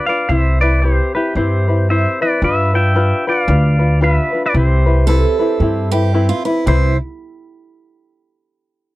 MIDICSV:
0, 0, Header, 1, 5, 480
1, 0, Start_track
1, 0, Key_signature, 0, "major"
1, 0, Tempo, 530973
1, 260, Time_signature, 4, 2, 24, 8
1, 8094, End_track
2, 0, Start_track
2, 0, Title_t, "Pedal steel guitar"
2, 0, Program_c, 0, 26
2, 59, Note_on_c, 0, 77, 101
2, 84, Note_on_c, 0, 74, 74
2, 257, Note_off_c, 0, 74, 0
2, 260, Note_on_c, 0, 76, 99
2, 263, Note_off_c, 0, 77, 0
2, 286, Note_on_c, 0, 72, 69
2, 540, Note_off_c, 0, 72, 0
2, 548, Note_off_c, 0, 76, 0
2, 552, Note_on_c, 0, 74, 91
2, 568, Note_on_c, 0, 71, 65
2, 737, Note_off_c, 0, 71, 0
2, 741, Note_on_c, 0, 72, 88
2, 750, Note_off_c, 0, 74, 0
2, 757, Note_on_c, 0, 67, 73
2, 1016, Note_off_c, 0, 67, 0
2, 1034, Note_off_c, 0, 72, 0
2, 1038, Note_on_c, 0, 71, 70
2, 1052, Note_on_c, 0, 67, 59
2, 1222, Note_off_c, 0, 67, 0
2, 1232, Note_off_c, 0, 71, 0
2, 1235, Note_on_c, 0, 72, 74
2, 1245, Note_on_c, 0, 67, 57
2, 1718, Note_off_c, 0, 72, 0
2, 1719, Note_on_c, 0, 76, 93
2, 1729, Note_on_c, 0, 72, 73
2, 1965, Note_off_c, 0, 67, 0
2, 1978, Note_off_c, 0, 76, 0
2, 1983, Note_off_c, 0, 72, 0
2, 2006, Note_on_c, 0, 74, 88
2, 2013, Note_on_c, 0, 71, 62
2, 2184, Note_off_c, 0, 71, 0
2, 2199, Note_off_c, 0, 74, 0
2, 2209, Note_on_c, 0, 76, 99
2, 2214, Note_on_c, 0, 71, 78
2, 2466, Note_off_c, 0, 71, 0
2, 2487, Note_on_c, 0, 79, 100
2, 2488, Note_off_c, 0, 76, 0
2, 2499, Note_on_c, 0, 76, 79
2, 2933, Note_off_c, 0, 76, 0
2, 2971, Note_on_c, 0, 77, 90
2, 2974, Note_off_c, 0, 79, 0
2, 2979, Note_on_c, 0, 74, 81
2, 3604, Note_off_c, 0, 74, 0
2, 3649, Note_on_c, 0, 76, 97
2, 3656, Note_off_c, 0, 77, 0
2, 3656, Note_on_c, 0, 71, 73
2, 3994, Note_off_c, 0, 76, 0
2, 3997, Note_off_c, 0, 71, 0
2, 4030, Note_on_c, 0, 71, 64
2, 4034, Note_on_c, 0, 74, 85
2, 4111, Note_off_c, 0, 71, 0
2, 4120, Note_off_c, 0, 74, 0
2, 4131, Note_on_c, 0, 67, 61
2, 4132, Note_on_c, 0, 72, 80
2, 5805, Note_off_c, 0, 67, 0
2, 5805, Note_off_c, 0, 72, 0
2, 6040, Note_on_c, 0, 72, 89
2, 6297, Note_off_c, 0, 72, 0
2, 8094, End_track
3, 0, Start_track
3, 0, Title_t, "Steel-string acoustic guitar"
3, 0, Program_c, 1, 25
3, 4582, Note_on_c, 1, 69, 97
3, 5344, Note_off_c, 1, 69, 0
3, 5347, Note_on_c, 1, 67, 104
3, 5682, Note_off_c, 1, 67, 0
3, 5686, Note_on_c, 1, 65, 82
3, 5828, Note_off_c, 1, 65, 0
3, 5831, Note_on_c, 1, 64, 63
3, 6011, Note_off_c, 1, 64, 0
3, 6030, Note_on_c, 1, 64, 71
3, 6291, Note_off_c, 1, 64, 0
3, 8094, End_track
4, 0, Start_track
4, 0, Title_t, "Ukulele"
4, 0, Program_c, 2, 24
4, 73, Note_on_c, 2, 71, 49
4, 84, Note_on_c, 2, 65, 48
4, 92, Note_on_c, 2, 62, 45
4, 264, Note_off_c, 2, 62, 0
4, 264, Note_on_c, 2, 67, 79
4, 265, Note_off_c, 2, 71, 0
4, 267, Note_off_c, 2, 65, 0
4, 267, Note_on_c, 2, 60, 76
4, 271, Note_on_c, 2, 64, 81
4, 278, Note_on_c, 2, 71, 84
4, 544, Note_off_c, 2, 71, 0
4, 549, Note_off_c, 2, 67, 0
4, 550, Note_off_c, 2, 60, 0
4, 552, Note_off_c, 2, 64, 0
4, 555, Note_on_c, 2, 71, 51
4, 564, Note_on_c, 2, 64, 53
4, 571, Note_on_c, 2, 60, 43
4, 745, Note_off_c, 2, 60, 0
4, 746, Note_off_c, 2, 71, 0
4, 749, Note_on_c, 2, 67, 61
4, 751, Note_off_c, 2, 64, 0
4, 756, Note_on_c, 2, 60, 59
4, 764, Note_on_c, 2, 64, 57
4, 768, Note_on_c, 2, 71, 69
4, 1026, Note_off_c, 2, 71, 0
4, 1032, Note_off_c, 2, 67, 0
4, 1034, Note_off_c, 2, 64, 0
4, 1035, Note_off_c, 2, 60, 0
4, 1037, Note_on_c, 2, 71, 51
4, 1045, Note_on_c, 2, 64, 52
4, 1055, Note_on_c, 2, 60, 47
4, 1220, Note_off_c, 2, 60, 0
4, 1225, Note_off_c, 2, 64, 0
4, 1227, Note_on_c, 2, 67, 74
4, 1228, Note_off_c, 2, 71, 0
4, 1231, Note_on_c, 2, 60, 81
4, 1236, Note_on_c, 2, 64, 96
4, 1238, Note_on_c, 2, 71, 88
4, 1506, Note_off_c, 2, 71, 0
4, 1511, Note_off_c, 2, 67, 0
4, 1513, Note_off_c, 2, 60, 0
4, 1516, Note_off_c, 2, 64, 0
4, 1517, Note_on_c, 2, 71, 50
4, 1526, Note_on_c, 2, 64, 44
4, 1534, Note_on_c, 2, 60, 44
4, 1706, Note_off_c, 2, 60, 0
4, 1707, Note_on_c, 2, 67, 55
4, 1708, Note_off_c, 2, 71, 0
4, 1711, Note_off_c, 2, 64, 0
4, 1717, Note_on_c, 2, 60, 58
4, 1721, Note_on_c, 2, 64, 64
4, 1730, Note_on_c, 2, 71, 58
4, 1987, Note_off_c, 2, 71, 0
4, 1992, Note_off_c, 2, 67, 0
4, 1996, Note_off_c, 2, 60, 0
4, 1996, Note_off_c, 2, 64, 0
4, 1998, Note_on_c, 2, 71, 60
4, 2007, Note_on_c, 2, 64, 59
4, 2013, Note_on_c, 2, 60, 48
4, 2188, Note_off_c, 2, 60, 0
4, 2188, Note_on_c, 2, 67, 75
4, 2189, Note_off_c, 2, 71, 0
4, 2192, Note_on_c, 2, 62, 78
4, 2194, Note_off_c, 2, 64, 0
4, 2198, Note_on_c, 2, 65, 92
4, 2200, Note_on_c, 2, 71, 91
4, 2463, Note_off_c, 2, 71, 0
4, 2472, Note_off_c, 2, 67, 0
4, 2473, Note_off_c, 2, 65, 0
4, 2474, Note_off_c, 2, 62, 0
4, 2474, Note_on_c, 2, 71, 59
4, 2484, Note_on_c, 2, 65, 59
4, 2490, Note_on_c, 2, 62, 54
4, 2659, Note_off_c, 2, 62, 0
4, 2663, Note_off_c, 2, 65, 0
4, 2664, Note_on_c, 2, 67, 69
4, 2665, Note_off_c, 2, 71, 0
4, 2670, Note_on_c, 2, 62, 72
4, 2674, Note_on_c, 2, 65, 84
4, 2676, Note_on_c, 2, 71, 93
4, 2947, Note_off_c, 2, 71, 0
4, 2951, Note_off_c, 2, 67, 0
4, 2953, Note_off_c, 2, 62, 0
4, 2955, Note_off_c, 2, 65, 0
4, 2958, Note_on_c, 2, 71, 62
4, 2971, Note_on_c, 2, 65, 53
4, 2976, Note_on_c, 2, 62, 48
4, 3141, Note_off_c, 2, 62, 0
4, 3145, Note_off_c, 2, 65, 0
4, 3146, Note_on_c, 2, 67, 70
4, 3149, Note_off_c, 2, 71, 0
4, 3152, Note_on_c, 2, 62, 71
4, 3156, Note_on_c, 2, 65, 69
4, 3163, Note_on_c, 2, 71, 69
4, 3417, Note_off_c, 2, 71, 0
4, 3428, Note_on_c, 2, 71, 56
4, 3429, Note_off_c, 2, 65, 0
4, 3431, Note_off_c, 2, 67, 0
4, 3434, Note_off_c, 2, 62, 0
4, 3440, Note_on_c, 2, 65, 56
4, 3448, Note_on_c, 2, 62, 40
4, 3618, Note_off_c, 2, 62, 0
4, 3622, Note_off_c, 2, 65, 0
4, 3624, Note_off_c, 2, 71, 0
4, 3624, Note_on_c, 2, 67, 81
4, 3629, Note_on_c, 2, 62, 79
4, 3633, Note_on_c, 2, 65, 83
4, 3636, Note_on_c, 2, 71, 82
4, 3899, Note_off_c, 2, 71, 0
4, 3910, Note_off_c, 2, 67, 0
4, 3910, Note_on_c, 2, 71, 59
4, 3912, Note_off_c, 2, 65, 0
4, 3913, Note_off_c, 2, 62, 0
4, 3923, Note_on_c, 2, 65, 45
4, 3929, Note_on_c, 2, 62, 45
4, 4103, Note_on_c, 2, 67, 81
4, 4105, Note_off_c, 2, 71, 0
4, 4106, Note_off_c, 2, 62, 0
4, 4109, Note_off_c, 2, 65, 0
4, 4109, Note_on_c, 2, 60, 83
4, 4113, Note_on_c, 2, 64, 88
4, 4116, Note_on_c, 2, 71, 95
4, 4383, Note_off_c, 2, 71, 0
4, 4389, Note_off_c, 2, 67, 0
4, 4390, Note_off_c, 2, 64, 0
4, 4393, Note_off_c, 2, 60, 0
4, 4394, Note_on_c, 2, 71, 66
4, 4401, Note_on_c, 2, 64, 53
4, 4412, Note_on_c, 2, 60, 51
4, 4584, Note_off_c, 2, 60, 0
4, 4587, Note_off_c, 2, 71, 0
4, 4588, Note_on_c, 2, 67, 78
4, 4590, Note_off_c, 2, 64, 0
4, 4595, Note_on_c, 2, 60, 82
4, 4601, Note_on_c, 2, 64, 89
4, 4601, Note_on_c, 2, 71, 84
4, 4864, Note_off_c, 2, 71, 0
4, 4872, Note_off_c, 2, 64, 0
4, 4872, Note_off_c, 2, 67, 0
4, 4875, Note_off_c, 2, 60, 0
4, 4875, Note_on_c, 2, 71, 59
4, 4883, Note_on_c, 2, 64, 56
4, 4892, Note_on_c, 2, 60, 56
4, 5065, Note_off_c, 2, 60, 0
4, 5067, Note_off_c, 2, 71, 0
4, 5071, Note_off_c, 2, 64, 0
4, 5071, Note_on_c, 2, 67, 70
4, 5076, Note_on_c, 2, 60, 72
4, 5082, Note_on_c, 2, 64, 70
4, 5086, Note_on_c, 2, 71, 78
4, 5343, Note_off_c, 2, 71, 0
4, 5351, Note_off_c, 2, 64, 0
4, 5353, Note_off_c, 2, 67, 0
4, 5354, Note_on_c, 2, 71, 59
4, 5355, Note_off_c, 2, 60, 0
4, 5362, Note_on_c, 2, 64, 59
4, 5372, Note_on_c, 2, 60, 47
4, 5541, Note_off_c, 2, 60, 0
4, 5544, Note_off_c, 2, 64, 0
4, 5545, Note_on_c, 2, 67, 69
4, 5546, Note_off_c, 2, 71, 0
4, 5551, Note_on_c, 2, 60, 84
4, 5554, Note_on_c, 2, 64, 88
4, 5558, Note_on_c, 2, 71, 97
4, 5821, Note_off_c, 2, 71, 0
4, 5829, Note_off_c, 2, 67, 0
4, 5832, Note_off_c, 2, 60, 0
4, 5832, Note_on_c, 2, 71, 59
4, 5834, Note_off_c, 2, 64, 0
4, 5846, Note_on_c, 2, 64, 59
4, 5849, Note_on_c, 2, 60, 44
4, 6018, Note_off_c, 2, 60, 0
4, 6021, Note_on_c, 2, 67, 83
4, 6024, Note_off_c, 2, 64, 0
4, 6025, Note_off_c, 2, 71, 0
4, 6029, Note_on_c, 2, 60, 84
4, 6035, Note_on_c, 2, 64, 88
4, 6044, Note_on_c, 2, 71, 93
4, 6249, Note_off_c, 2, 67, 0
4, 6253, Note_off_c, 2, 60, 0
4, 6256, Note_off_c, 2, 64, 0
4, 6261, Note_off_c, 2, 71, 0
4, 8094, End_track
5, 0, Start_track
5, 0, Title_t, "Upright bass"
5, 0, Program_c, 3, 32
5, 264, Note_on_c, 3, 36, 91
5, 888, Note_off_c, 3, 36, 0
5, 1223, Note_on_c, 3, 43, 87
5, 1848, Note_off_c, 3, 43, 0
5, 2186, Note_on_c, 3, 43, 96
5, 2810, Note_off_c, 3, 43, 0
5, 3144, Note_on_c, 3, 38, 109
5, 3768, Note_off_c, 3, 38, 0
5, 4108, Note_on_c, 3, 36, 105
5, 4730, Note_off_c, 3, 36, 0
5, 5063, Note_on_c, 3, 43, 100
5, 5686, Note_off_c, 3, 43, 0
5, 6026, Note_on_c, 3, 36, 96
5, 6289, Note_off_c, 3, 36, 0
5, 8094, End_track
0, 0, End_of_file